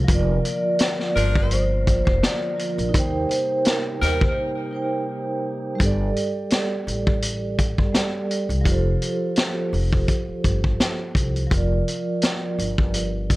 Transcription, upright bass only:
0.09 F1
1.16 G1
2.07 F1
2.78 A#1
2.94 D#2
4.02 D#2
5.80 G1
6.87 A1
7.78 G1
8.49 C2
8.66 F1
9.73 F1
10.28 muted upright bass stroke
10.44 G1
11.15 C2
11.51 F1
12.59 G1

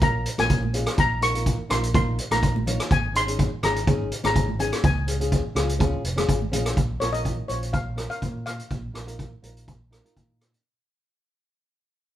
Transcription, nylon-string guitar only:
0.01 C#4 F4 A#4
0.38 C#4 F4 A#4
0.73 C#4 F4 G#4
1.21 D#4 F4 A#4
1.34 D#4 F4 A#4
1.69 D#4 F4 A#4
1.94 D#4 F4 A#4
2.31 D#4 F4 A#4
2.66 D#4 F4 C#5
3.14 C#4 D#4 G#4
3.26 C#4 D#4 G#4
3.62 C#4 D#4 G#4
3.87 C#4 D#4 G#4
4.23 C#4 D#4 G#4
4.59 C#4 D#4 G#4
5.07 C#4 F4 G#4
5.20 C#4 F4 G#4
5.55 C#4 F4 G#4
5.79 C#4 F4 G#4
6.16 C#4 F4 G#4
6.52 C#4 F4 G#4
7.00 C#4 F4 A#4
7.12 C#4 F4 A#4
7.48 C#4 F4 C5
7.96 C#4 F4 A#4
8.09 C#4 F4 A#4
8.93 D#4 F4 A#4
9.06 D#4 F4 A#4
9.42 D#4 F4 A#4
9.90 D#4 F4 A#4
10.04 D#4 F4 A#4

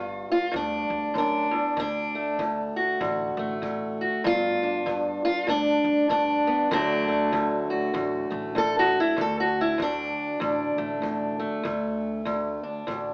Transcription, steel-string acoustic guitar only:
Already playing: G2 F4
0.32 F4
0.52 G2
0.56 D4
1.14 F#2
1.18 D4
1.51 E2
1.77 D2 D4
2.15 A3
2.39 D2
2.76 F#4
3.01 D2
3.39 A3
3.62 D2
4.01 F#4
4.24 G2 F4
4.63 D4
4.86 G2
5.25 F4
5.47 G2 D4
6.09 G2 D4
6.47 B3
6.71 D2 D3 F#3 A3 D4
7.08 A3
7.32 D2
7.70 F#4
7.94 D2
8.30 A3
8.55 D2 A4
8.79 F#4
9.00 E4
9.17 D2
9.21 A4
9.40 F#4
9.61 E4
9.78 D2
9.82 D4
10.40 D2
10.78 A3
11.02 D2
11.39 A3
11.63 D2
12.25 D2
12.63 D4
12.87 D2

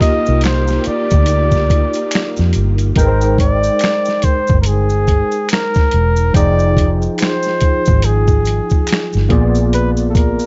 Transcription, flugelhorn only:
0.02 D#5
0.45 C5
0.87 D5
2.97 A#4
3.40 D5
4.24 C5
4.61 A#4
4.67 G#4
5.52 A#4
6.36 D5
7.21 C5
8.05 G#4
9.75 B4
10.10 A4
10.16 A#4

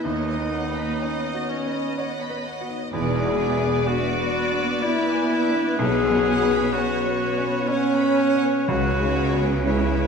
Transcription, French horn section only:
0.04 D#4
1.50 C#4
2.93 G#4
3.87 F#4
4.84 E4
5.79 G#4
6.74 F#4
7.68 C#4
8.69 F#4
9.65 E4

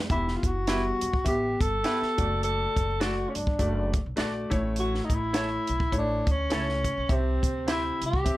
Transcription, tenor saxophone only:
0.11 E4
0.36 F4
0.46 F#4
1.28 G4
1.61 A4
2.44 A4
3.02 F#4
3.29 C#4
3.35 D4
4.79 F#4
5.05 D#4
5.15 E4
5.98 D4
6.31 C#4
7.13 C4
7.71 E4
8.06 G4

